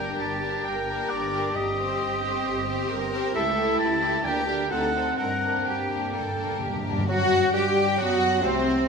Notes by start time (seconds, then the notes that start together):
Already playing: G1 G2 A#3 D4 G4 A#4 G5
0.19 G1 G4 A5
0.41 D4 G4 A#4
0.64 G1 A#4 G5
0.87 D4 G4 A#4
1.09 G1 D5
1.32 D4 G4 A#4
1.55 G1 G2 C4 G4 D#5
1.77 C4 G4 C5
2.00 G1
2.23 C4 G4 C5
2.45 G1
2.67 C4 G4 C5
2.90 G1 A#4
3.11 C4 G4 C5
3.34 C#2 A3 E4 G4 A4 E5
3.56 E4 G4 A4
3.79 C#2 E4 A5
4.01 E4 G4 A4
4.23 D2 D3 A#3 D4 G4 A#4 G5
4.47 D4 G4 A#4
4.71 D2 C4 D#4 A4 F#5
4.94 C4 D#4 A4
5.17 G2 D4 A#4 F#5
5.26 G2
5.34 G2
5.42 G2 A#3 D4 A#4
5.49 G2
5.57 G2
5.65 G2 G4 G5
5.73 G2
5.81 G2
5.88 G2 A#3 D4 A#4
5.96 G2
6.04 G2
6.12 G2 A#3 A4
6.20 G2
6.28 G2
6.36 G2 A#3 D4 A#4
6.44 G2
6.51 G2
6.59 G2 G4
6.67 G2
6.75 G2
6.83 G2 A#3 D4 A#4
6.91 G2
6.98 G2
7.08 F#2 F#3 F#4 F#5
7.53 G2 G3 G4 G5
7.98 F#2 F#3 B3 F#4 F#5
8.43 C2 C3 A3 C4 C5